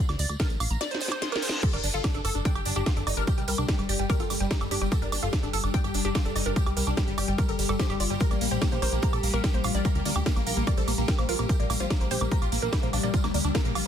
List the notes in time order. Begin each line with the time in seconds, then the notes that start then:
0.09 D2, snare, closed hi-hat, tambourine, high woodblock
0.19 D2 D5, open hi-hat, tambourine
0.29 D2, closed hi-hat, tambourine, high woodblock
0.39 A#4, kick, snare, closed hi-hat, tambourine
0.50 A#1, closed hi-hat, tambourine
0.60 A#1 F5, open hi-hat, tambourine, high woodblock
0.71 A#1 A#5, closed hi-hat, tambourine
0.81 D5, snare, closed hi-hat, tambourine, reverse cymbal, high woodblock
0.90 C5, closed hi-hat, tambourine
0.95 snare
1.00 C5, open hi-hat, tambourine
1.08 C5, snare, high woodblock
1.22 C6, snare, closed hi-hat, tambourine
1.32 A#4, snare, closed hi-hat, tambourine, high woodblock
1.42 C5, open hi-hat, tambourine
1.49 C6, snare
1.54 tambourine
1.63 G3 G4 A4, kick, closed hi-hat, crash, tambourine
1.73 G1 D4 A#4, closed hi-hat, tambourine, high woodblock
1.84 G1 D4, open hi-hat, tambourine
1.94 G1 F4 A4, closed hi-hat, tambourine
2.04 D4, kick, snare, closed hi-hat, tambourine, high woodblock
2.14 G1 D4 A4, closed hi-hat, tambourine
2.25 G1 A4, open hi-hat, tambourine, high woodblock
2.35 G1 D4, closed hi-hat, tambourine
2.45 D4 G5, kick, closed hi-hat, tambourine
2.55 G1 G4, closed hi-hat, tambourine, high woodblock
2.65 G1 D4, open hi-hat, tambourine
2.76 G1 D4 G4, closed hi-hat, tambourine, high woodblock
2.86 F4 G4, kick, snare, closed hi-hat, tambourine
2.96 G1 D4 A4, closed hi-hat, tambourine
3.07 G1 D#4 D5, open hi-hat, tambourine, high woodblock
3.17 G1 D4 A#4, closed hi-hat, tambourine
3.27 G4, kick, closed hi-hat, tambourine, high woodblock
3.38 C2 G3 G5, closed hi-hat, tambourine
3.48 C2 G3 A#4, open hi-hat, tambourine
3.58 C2 D4, tambourine, high woodblock
3.68 G3 G4, kick, snare, closed hi-hat, tambourine
3.79 G1 G3, closed hi-hat, tambourine, high woodblock
3.89 G1 G4 D5, open hi-hat, tambourine
3.99 G1 G3 G5, closed hi-hat
4.10 G3 A#4, kick, closed hi-hat, tambourine, high woodblock
4.19 G1 F4 A4, closed hi-hat, tambourine
4.30 G1 G3, open hi-hat, tambourine, high woodblock
4.40 G1 G3 G5, closed hi-hat, tambourine
4.51 D#4 G4, kick, snare, closed hi-hat, tambourine
4.61 G1 G3 A4, closed hi-hat, tambourine, high woodblock
4.71 G1 D4 G4, open hi-hat, tambourine
4.81 G1 G3 G5, tambourine, high woodblock
4.92 G4 A4, kick, closed hi-hat, tambourine
5.02 G1 D4 A#4, closed hi-hat, tambourine
5.12 G1 D4, open hi-hat, tambourine, high woodblock
5.23 G1 F4 A4, closed hi-hat, tambourine
5.33 D4, kick, snare, closed hi-hat, tambourine, high woodblock
5.43 G1 D4 A4, closed hi-hat, tambourine
5.53 G1 A4, open hi-hat, tambourine
5.64 G1 D4, closed hi-hat, tambourine, high woodblock
5.74 D4 G5, kick, closed hi-hat, tambourine
5.84 G1 G4, closed hi-hat, tambourine, high woodblock
5.94 G1 D4, open hi-hat, tambourine
6.05 G1 D4 G4, closed hi-hat, tambourine
6.15 F4 G4, kick, snare, closed hi-hat, tambourine, high woodblock
6.25 G1 D4 A4, closed hi-hat, tambourine
6.36 G1 D#4 D5, open hi-hat, tambourine, high woodblock
6.46 G1 D4 A#4, tambourine
6.56 G4, kick, closed hi-hat, tambourine
6.66 C2 G3 G5, closed hi-hat, tambourine, high woodblock
6.77 C2 G3 A#4, open hi-hat, tambourine
6.87 C2 D4, closed hi-hat, tambourine, high woodblock
6.97 G3 G4, kick, snare, closed hi-hat, tambourine
7.07 G1 G3, closed hi-hat, tambourine
7.18 G1 G4 D5, open hi-hat, tambourine, high woodblock
7.28 G1 G3 G5, closed hi-hat, tambourine
7.38 G3 A#4, kick, closed hi-hat, tambourine, high woodblock
7.48 G1 A4 A#4, closed hi-hat, tambourine
7.59 G1 G3, open hi-hat, tambourine
7.69 G1 G3 A4, tambourine, high woodblock
7.79 G4 C5, kick, snare, closed hi-hat, tambourine
7.90 G1 G3 G4, closed hi-hat, tambourine, high woodblock
8.00 G1 F4 D5, open hi-hat, tambourine
8.10 G1 G3 G5, closed hi-hat, tambourine
8.20 A#4, kick, closed hi-hat, tambourine
8.31 A#1 A#3 D5, closed hi-hat, tambourine, high woodblock
8.41 A#1 A#3, open hi-hat, tambourine
8.51 A#1 G4 C5, closed hi-hat, tambourine
8.61 A#3, kick, snare, closed hi-hat, tambourine, high woodblock
8.72 A#1 A#3 C5, closed hi-hat, tambourine
8.82 A#1 A#4 C5, open hi-hat, tambourine, high woodblock
8.92 A#1 A#3, closed hi-hat, tambourine
9.02 A#3 A#5, kick, closed hi-hat, tambourine
9.13 A#1 A4, closed hi-hat, tambourine, high woodblock
9.23 A#1 A#3, open hi-hat, tambourine
9.34 A#1 A#3 A#4, closed hi-hat, tambourine, high woodblock
9.44 G4, kick, snare, closed hi-hat, tambourine
9.53 A#1 A#3 C5, closed hi-hat, tambourine
9.64 A#1 F4 F5, open hi-hat, tambourine, high woodblock
9.75 A#1 A#3 D5, closed hi-hat, tambourine
9.85 A#4, kick, closed hi-hat, tambourine, high woodblock
9.95 D2 A#3 A#5, closed hi-hat, tambourine
10.05 D2 A#3 D5, open hi-hat, tambourine
10.16 D2 G4, high woodblock
10.26 A#3 A#4, kick, snare, closed hi-hat, tambourine
10.36 A#1 A#3, closed hi-hat, tambourine, high woodblock
10.47 A#1 A#4 F5, open hi-hat, tambourine
10.57 A#1 A#3 A#5, tambourine
10.67 A#3 D5, kick, closed hi-hat, tambourine, high woodblock
10.77 A#1 A4 C5, closed hi-hat, tambourine
10.88 A#1 A#3, open hi-hat, tambourine, high woodblock
10.98 A#1 A#3 A#5, closed hi-hat, tambourine
11.08 G4 A#4, kick, snare, closed hi-hat, tambourine
11.18 A#1 A#3 C5, closed hi-hat, tambourine, high woodblock
11.29 A#1 F4 A#4, open hi-hat, tambourine
11.39 A#1 A#3 A#5, closed hi-hat, tambourine, high woodblock
11.49 G4 A#4, kick, closed hi-hat, tambourine, riser
11.60 A#1 A#3 D5, closed hi-hat, tambourine
11.70 A#1 A#3, open hi-hat, tambourine, high woodblock
11.80 A#1 F4 C5, closed hi-hat, tambourine
11.90 A#3, kick, snare, closed hi-hat, tambourine, high woodblock
12.01 A#1 A#3 C5, closed hi-hat, tambourine
12.11 A#1 G4 C5, open hi-hat, tambourine
12.21 A#1 A#3, closed hi-hat, tambourine, high woodblock
12.32 A#3 A#5, kick, closed hi-hat, tambourine
12.42 A#1 F4, closed hi-hat, tambourine, high woodblock
12.52 A#1 A#3, open hi-hat, tambourine
12.62 A#1 A#3 A#4, closed hi-hat, tambourine
12.73 E4, kick, snare, closed hi-hat, tambourine, high woodblock
12.83 A#1 A#3 C5, closed hi-hat, tambourine
12.93 A#1 D4 F5, open hi-hat, tambourine, high woodblock
13.03 A#1 A#3 D5, closed hi-hat, tambourine
13.14 F4, kick, closed hi-hat, tambourine
13.24 D2 A#3 A#5, snare, closed hi-hat, tambourine, high woodblock
13.34 D2 A#3 D5, open hi-hat, tambourine
13.45 D2 D4, closed hi-hat, tambourine, high woodblock
13.55 A#3 A#4, kick, snare, closed hi-hat, tambourine
13.65 A#1 A#3, closed hi-hat, tambourine
13.75 A#1 F4 F5, open hi-hat, tambourine, high woodblock